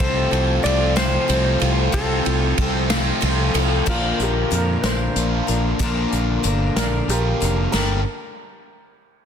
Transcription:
0.00 0.26 C2 loud
0.00 0.31 C3 loud
0.00 0.32 F3 loud
0.00 0.33 A3 loud
0.00 0.32 C4 loud
0.00 0.32 F4 loud
0.00 0.30 A4 loud
0.00 0.66 C5 loud
0.00 kick loud
0.00 ride medium
0.31 0.58 C2 medium
0.31 0.65 A3 medium
0.31 0.63 C4 soft
0.31 0.63 F4 medium
0.31 0.64 A4 medium
0.31 ride medium
0.63 1.17 C2 medium
0.63 0.95 F3 medium
0.63 0.98 A3 medium
0.63 0.96 C4 medium
0.63 0.95 F4 medium
0.63 0.95 A4 medium
0.63 0.97 D5 loud
0.63 ride medium
0.96 1.29 C3 medium
0.96 1.27 F3 medium
0.96 1.28 A3 medium
0.96 1.28 C4 medium
0.96 1.28 F4 medium
0.96 1.28 A4 medium
0.96 1.96 C5 loud
0.96 snare loud
0.96 ride loud
1.28 1.55 C2 loud
1.28 1.61 F3 medium
1.28 1.63 A3 medium
1.28 1.61 C4 medium
1.28 1.60 F4 medium
1.28 1.59 A4 medium
1.28 ride medium
1.60 1.88 C2 loud
1.60 1.92 C4 soft
1.60 1.93 F4 soft
1.60 1.93 A4 medium
1.60 ride medium
1.64 1.94 A3 medium
1.92 2.20 C2 loud
1.92 2.25 C3 medium
1.92 2.25 F3 medium
1.92 2.27 A3 medium
1.92 2.26 C4 medium
1.92 2.25 F4 medium
1.92 3.19 A4 medium
1.92 2.24 A4 loud
1.92 kick medium
1.92 ride loud
2.25 2.52 C2 medium
2.25 2.59 A3 medium
2.25 2.58 C4 soft
2.25 2.58 F4 medium
2.25 2.58 A4 medium
2.25 ride medium
2.58 3.10 C2 medium
2.58 2.90 F3 medium
2.58 2.91 A3 medium
2.58 2.89 C4 medium
2.58 2.89 F4 medium
2.58 2.89 A4 medium
2.58 kick medium
2.58 ride medium
2.90 3.23 C3 medium
2.90 3.20 F3 medium
2.90 3.22 A3 medium
2.90 3.20 C4 medium
2.90 3.21 F4 loud
2.90 3.22 A4 medium
2.90 snare loud
2.90 ride loud
3.21 3.49 C2 medium
3.21 3.54 F3 medium
3.21 3.56 A3 medium
3.21 3.54 C4 medium
3.21 3.54 F4 medium
3.21 3.53 A4 medium
3.21 ride medium
3.54 3.81 C2 medium
3.54 3.86 A3 medium
3.54 3.87 C4 soft
3.54 3.87 F4 medium
3.54 3.87 A4 medium
3.54 ride medium
3.86 4.11 A#1 medium
3.86 4.51 A#2 medium
3.86 4.51 D3 loud
3.86 4.49 F3 medium
3.86 4.51 A#3 loud
3.86 4.51 D4 loud
3.86 4.19 F4 medium
3.86 4.52 A#4 medium
3.86 kick medium
3.86 crash loud
3.90 5.16 F4 medium
4.20 4.43 A#1 medium
4.20 4.52 G4 medium
4.20 closed hi-hat medium
4.51 4.75 F2 medium
4.51 4.83 F3 medium
4.51 4.83 A#3 medium
4.51 4.82 D4 medium
4.51 4.82 A#4 medium
4.51 4.84 A#4 medium
4.51 closed hi-hat medium
4.81 5.08 A#1 medium
4.81 5.49 A#2 medium
4.81 5.49 D3 medium
4.81 5.48 F3 medium
4.81 5.49 A#3 medium
4.81 5.48 D4 medium
4.81 5.47 A#4 medium
4.81 4.85 B4 medium
4.81 snare loud
4.81 closed hi-hat medium
4.85 6.74 C5 medium
5.16 5.40 A#1 loud
5.16 5.79 A#2 medium
5.16 5.79 D3 medium
5.16 5.83 A#3 medium
5.16 5.83 D4 medium
5.16 5.80 F4 medium
5.16 closed hi-hat medium
5.47 5.73 A#1 medium
5.47 5.80 F3 medium
5.47 5.81 A#3 medium
5.47 5.81 D4 medium
5.47 5.80 A#4 medium
5.47 closed hi-hat medium
5.79 6.04 A#1 medium
5.79 6.45 A#2 loud
5.79 6.45 D3 medium
5.79 6.42 F3 loud
5.79 6.43 A#3 loud
5.79 6.44 D4 loud
5.79 6.45 A#4 loud
5.79 kick loud
5.79 closed hi-hat medium
5.84 7.10 F4 loud
6.12 6.37 A#1 medium
6.12 closed hi-hat medium
6.43 6.69 G1 medium
6.43 6.76 F3 medium
6.43 6.76 A#3 medium
6.43 6.76 D4 medium
6.43 6.76 A#4 medium
6.43 closed hi-hat medium
6.76 7.01 A#1 loud
6.76 7.42 A#2 medium
6.76 7.42 D3 medium
6.76 7.42 F3 medium
6.76 7.41 A#3 medium
6.76 7.41 D4 medium
6.76 7.39 A#4 medium
6.76 7.09 A#4 medium
6.76 snare loud
6.76 closed hi-hat medium
7.08 7.33 A#1 loud
7.08 7.72 A#2 medium
7.08 7.73 D3 medium
7.08 7.73 A#3 medium
7.08 7.73 D4 medium
7.08 7.74 F4 medium
7.08 7.55 G4 medium
7.08 7.57 A#4 medium
7.08 closed hi-hat medium
7.40 7.66 F1 loud
7.40 7.73 F3 medium
7.40 7.73 A#3 medium
7.40 7.73 D4 medium
7.40 7.73 A#4 medium
7.40 closed hi-hat medium
7.72 8.04 G1 medium
7.72 7.99 G2 medium
7.72 7.99 D3 medium
7.72 8.00 G3 loud
7.72 8.00 A#3 medium
7.72 8.00 D4 loud
7.72 8.03 A#4 medium
7.72 8.00 A#4 loud
7.72 snare medium
7.72 splash medium
7.77 8.01 G4 medium

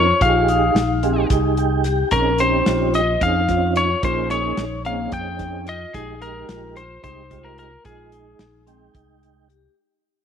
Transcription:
0.00 0.11 F2 medium
0.00 0.21 C#5 medium
0.21 0.69 A#1 medium
0.21 0.82 D#4 medium
0.21 0.43 F4 medium
0.21 0.82 G4 medium
0.21 0.82 G#4 medium
0.21 1.27 F5 medium
0.21 kick medium
0.21 closed hi-hat medium
0.48 0.91 D#4 medium
0.48 closed hi-hat medium
0.75 1.23 A#1 medium
0.75 snare loud
0.75 closed hi-hat medium
1.03 1.25 C4 medium
1.03 1.85 D#4 medium
1.03 1.85 G4 medium
1.03 1.85 G#4 medium
1.03 closed hi-hat medium
1.30 2.02 C2 medium
1.30 1.73 D#4 medium
1.30 kick medium
1.30 snare soft
1.30 closed hi-hat medium
1.57 2.09 G5 medium
1.57 closed hi-hat medium
1.84 2.06 G4 medium
1.84 snare soft
1.84 closed hi-hat medium
2.11 2.60 A#1 medium
2.11 2.33 C4 medium
2.11 2.55 C#4 medium
2.11 2.33 C#4 medium
2.11 2.33 D#4 medium
2.11 2.34 G#4 medium
2.11 2.41 A#4 medium
2.11 kick medium
2.11 closed hi-hat medium
2.38 3.01 C4 medium
2.38 3.01 C#4 medium
2.38 3.01 D#4 medium
2.38 3.01 G4 medium
2.38 2.95 C5 medium
2.38 closed hi-hat medium
2.66 3.15 A#1 medium
2.66 3.09 F4 medium
2.66 snare loud
2.66 closed hi-hat medium
2.94 3.23 D#5 medium
2.94 closed hi-hat medium
3.21 3.93 F2 medium
3.21 3.42 C4 medium
3.21 3.42 C#4 medium
3.21 3.43 D#4 medium
3.21 3.42 D#4 medium
3.21 3.42 G#4 medium
3.21 3.73 F5 medium
3.21 kick medium
3.21 closed hi-hat medium
3.48 3.89 C4 medium
3.48 3.89 C#4 medium
3.48 3.90 D#4 medium
3.48 3.91 F4 medium
3.48 3.90 F4 medium
3.48 kick medium
3.48 snare soft
3.48 closed hi-hat medium
3.76 4.04 C#5 medium
3.76 closed hi-hat medium
4.03 4.51 A#1 medium
4.03 4.64 A#3 medium
4.03 4.65 C#4 medium
4.03 4.65 D#4 medium
4.03 4.25 F4 medium
4.03 4.65 G#4 medium
4.03 4.30 C5 medium
4.03 kick medium
4.03 closed hi-hat medium
4.30 4.74 D#4 medium
4.30 4.82 C#5 medium
4.30 snare soft
4.30 closed hi-hat medium
4.57 5.06 A#1 medium
4.57 snare loud
4.57 closed hi-hat medium
4.85 5.07 A#3 medium
4.85 5.67 C4 medium
4.85 5.67 C#4 medium
4.85 5.67 D#4 medium
4.85 5.67 G#4 medium
4.85 5.13 F5 medium
4.85 closed hi-hat medium
5.12 5.84 F2 medium
5.12 5.56 D#4 medium
5.12 5.69 G5 medium
5.12 kick medium
5.12 closed hi-hat medium
5.39 kick medium
5.39 snare soft
5.39 closed hi-hat medium
5.67 5.89 F4 medium
5.67 5.94 D#5 medium
5.67 closed hi-hat medium
5.94 6.43 A#1 loud
5.94 6.15 G#3 medium
5.94 6.15 D#4 medium
5.94 6.37 D#4 medium
5.94 6.15 G4 medium
5.94 6.20 G#4 medium
5.94 kick medium
5.94 closed hi-hat medium
6.22 6.83 G#3 medium
6.22 6.83 D#4 medium
6.22 6.83 G4 medium
6.22 6.78 A#4 medium
6.22 closed hi-hat medium
6.49 6.97 A#1 medium
6.49 6.92 F4 medium
6.49 snare loud
6.49 closed hi-hat medium
6.76 7.02 C5 medium
6.76 closed hi-hat medium
7.03 7.76 C2 medium
7.03 7.23 G#3 medium
7.03 7.25 D#4 medium
7.03 7.24 D#4 medium
7.03 7.24 G4 medium
7.03 7.46 C5 medium
7.03 kick medium
7.03 closed hi-hat medium
7.30 7.71 G#3 medium
7.30 7.71 D#4 medium
7.30 7.73 F4 medium
7.30 7.72 G4 medium
7.30 kick medium
7.30 closed hi-hat medium
7.45 7.58 A#4 medium
7.58 7.85 A#4 medium
7.58 closed hi-hat medium
7.84 8.33 A#1 loud
7.84 8.46 G#3 medium
7.84 8.46 D#4 medium
7.84 8.07 F4 medium
7.84 8.46 G#4 medium
7.84 9.18 G#4 medium
7.84 kick medium
7.84 closed hi-hat medium
8.12 8.55 D#4 medium
8.12 closed hi-hat medium
8.39 8.88 A#1 medium
8.39 snare loud
8.39 closed hi-hat medium
8.67 9.48 G#3 medium
8.67 8.88 C4 medium
8.67 9.48 D#4 medium
8.67 9.49 G5 medium
8.67 closed hi-hat medium
8.94 9.66 C2 medium
8.94 9.37 D#4 medium
8.94 kick medium
8.94 closed hi-hat medium
9.23 closed hi-hat soft
9.50 9.71 G4 medium
9.50 closed hi-hat soft

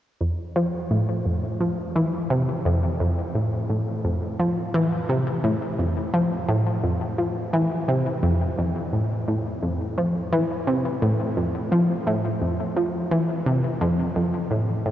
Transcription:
0.21 0.37 F2 medium
0.56 0.72 F3 medium
0.91 1.15 A2 medium
1.26 1.42 F2 medium
1.60 1.77 F3 medium
1.96 2.12 E3 medium
2.30 2.46 C3 medium
2.65 2.89 F2 medium
3.00 3.16 F2 medium
3.35 3.59 A2 medium
3.69 3.79 A2 medium
4.04 4.21 F2 medium
4.39 4.56 F3 medium
4.74 4.90 E3 loud
5.09 5.25 C3 medium
5.44 5.54 A2 loud
5.79 5.95 F2 medium
6.14 6.30 F3 medium
6.48 6.73 A2 medium
6.84 7.00 F2 medium
7.18 7.35 F3 medium
7.53 7.69 E3 loud
7.88 8.04 C3 loud
8.23 8.47 F2 loud
8.58 8.74 F2 medium
8.93 9.17 A2 medium
9.28 9.38 A2 medium
9.62 9.79 F2 medium
9.97 10.14 F3 medium
10.32 10.48 E3 loud
10.67 10.83 C3 medium
11.02 11.12 A2 loud
11.37 11.53 F2 medium
11.72 11.88 F3 loud
12.07 12.31 A2 medium
12.42 12.58 F2 medium
12.76 12.93 F3 medium
13.11 13.28 E3 medium
13.46 13.63 C3 medium
13.81 14.05 F2 loud
14.16 14.32 F2 medium
14.51 14.75 A2 medium
14.86 14.91 A2 medium

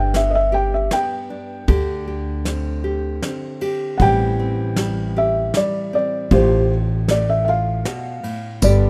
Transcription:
0.00 0.87 G1 medium
0.00 1.64 G2 medium
0.00 1.29 D4 soft
0.00 0.52 G4 medium
0.00 0.13 G5 medium
0.14 0.90 B3 soft
0.14 0.33 E5 medium
0.14 snare medium
0.14 ride soft
0.31 0.35 D#5 medium
0.35 0.52 E5 medium
0.52 1.68 G4 medium
0.52 0.71 G5 medium
0.74 0.91 E5 medium
0.91 1.64 B3 medium
0.91 1.67 G5 medium
0.91 snare medium
0.91 ride soft
1.30 1.64 D4 medium
1.68 3.19 D2 medium
1.68 4.00 D3 medium
1.68 2.07 G4 medium
1.68 kick medium
1.68 ride soft
2.08 2.84 G4 medium
2.45 3.22 C4 medium
2.45 snare medium
2.45 ride soft
2.84 3.60 G4 medium
3.22 4.01 C4 medium
3.22 snare medium
3.22 ride soft
3.61 3.96 G4 medium
3.61 ride soft
3.98 5.50 A1 medium
3.98 6.30 A2 medium
3.98 6.27 E3 medium
3.98 4.77 G3 medium
3.98 4.02 F#5 medium
3.98 kick medium
3.98 ride soft
4.02 4.39 C4 medium
4.02 5.15 G4 medium
4.02 5.13 G5 medium
4.39 5.92 C4 soft
4.76 5.53 G3 soft
4.76 snare medium
4.76 ride soft
5.16 6.27 G4 medium
5.16 5.54 E5 medium
5.54 6.32 G3 medium
5.54 5.93 D5 medium
5.54 snare medium
5.54 ride soft
5.93 6.27 C4 medium
5.93 6.31 D5 medium
6.31 7.82 A1 loud
6.31 7.85 A2 medium
6.31 7.47 F4 medium
6.31 6.68 G4 medium
6.31 6.70 C5 medium
6.31 kick medium
6.31 ride soft
7.08 8.59 A3 soft
7.08 7.28 D5 medium
7.08 snare medium
7.08 ride soft
7.30 7.43 E5 medium
7.45 8.59 F4 medium
7.45 7.49 E5 soft
7.49 8.60 F5 medium
7.85 8.23 B2 medium
7.85 snare medium
7.85 ride soft
8.23 8.62 A2 medium
8.23 ride soft
8.62 8.90 G1 medium
8.62 8.90 G2 medium
8.62 8.90 D3 medium
8.62 8.90 B3 medium
8.62 8.90 D4 medium
8.62 8.90 G4 medium
8.62 8.90 D5 medium
8.62 kick medium
8.62 ride soft
8.62 tambourine medium

